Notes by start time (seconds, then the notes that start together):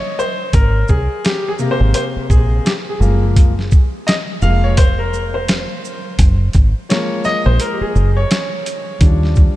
Already playing: C#5
0.19 C5, shaker
0.53 G#1 A#4, kick, closed hi-hat
0.88 C2 G#4, kick, shaker
1.24 G4, snare, closed hi-hat
1.48 G#4
1.59 C3 A#3 G4, shaker
1.71 C5
1.81 G#1
1.94 C5, closed hi-hat
2.16 muted fingered electric bass stroke
2.30 A#1 G#4, kick, shaker
2.66 G4, snare, closed hi-hat
2.89 G#4
3.00 F#1 F3 G#3 A#3, shaker
3.36 kick, closed hi-hat
3.59 snare
3.71 kick, shaker
4.07 D#5, snare, closed hi-hat
4.42 F1 F3 G#3 A#3 F5, shaker
4.64 C#5
4.77 C5, kick, closed hi-hat
4.99 A#4
5.13 shaker
5.34 C5
5.48 snare, closed hi-hat
5.85 shaker
6.19 F#1, kick, closed hi-hat
6.53 G#1, kick, closed hi-hat, shaker
6.89 F3 G#3 A#3 C#5, snare, closed hi-hat
7.24 D#5, snare, shaker
7.46 A#1 C5
7.60 A#4, closed hi-hat
7.73 G4
7.81 G#4, muted fingered electric bass stroke
7.95 F#1, shaker
8.17 C#5
8.31 snare, closed hi-hat
8.66 closed hi-hat, shaker
9.01 D#2 F3 G3 D4, kick, closed hi-hat
9.23 snare
9.35 kick, shaker